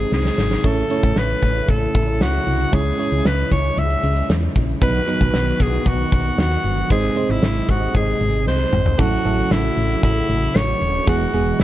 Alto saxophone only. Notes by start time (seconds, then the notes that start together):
Already playing: G#4
0.14 G#4
0.66 A4
1.18 B4
1.70 A4
2.22 F#4
2.74 G#4
3.26 B4
3.52 C#5
3.78 E5
4.83 B4
5.61 G#4
5.87 F#4
6.40 F#4
6.92 G#4
7.31 E4
7.70 F#4
7.96 G#4
8.48 C5
9.00 F#4
9.52 E4
10.04 E4
10.56 C#5
11.09 F#4
11.61 E4